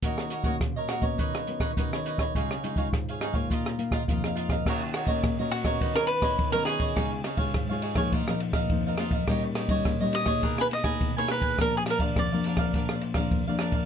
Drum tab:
CC |----------------|----------------|x---------------|----------------|
RD |----------------|----------------|--xxx-xxx-xxx-xx|x-xxx-xxx-xxx-xx|
HH |x-xxx-xxxxx-xxxx|x-xxxxxxxxxxxxxx|----------------|----------------|
SD |-r--r-r--r-r-r-r|-r--r-r--r-r-r-r|r-r-r--r-r-r--r-|r-r-r--r-r-r--r-|
BD |o--oo--oo--oo--o|o--oo--oo--oo--o|o--oo--oo--oo--o|o--oo--oo--oo--o|

CC |----------------|----------------|
RD |x-xxx-xxx-xxx-xx|x-xxx-xxx-xxx-xx|
HH |----------------|----------------|
SD |r-r-r--r-r-r--r-|r-r-r--r-r-r--r-|
BD |o--oo--oo--oo--o|o--oo--oo--oo--o|